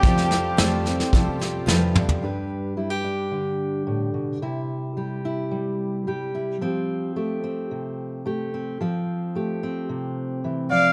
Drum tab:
SD |ooo-o-ooo-o-o---|----------------|----------------|----------------|
T2 |--------------o-|----------------|----------------|----------------|
FT |---------------o|----------------|----------------|----------------|
BD |o-------o-------|----------------|----------------|----------------|

SD |----------------|
T2 |----------------|
FT |----------------|
BD |----------------|